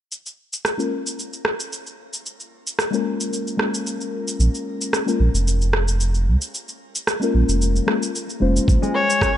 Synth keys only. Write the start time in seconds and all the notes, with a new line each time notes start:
0.77 G#3 A#3 C#4 F4 A#4
2.91 G#3 A#3 C#4 F4
2.95 A#4
3.57 G#3 A#3 C#4 F4
3.61 A#4
5.06 G#3 A#3 C#4 F4 A#4
7.20 G#3 A#3 C#4 F4
7.24 A#4
7.86 G#3 A#3 C#4 F4 A#4
8.40 G#3 A#3 C#4 F4 C5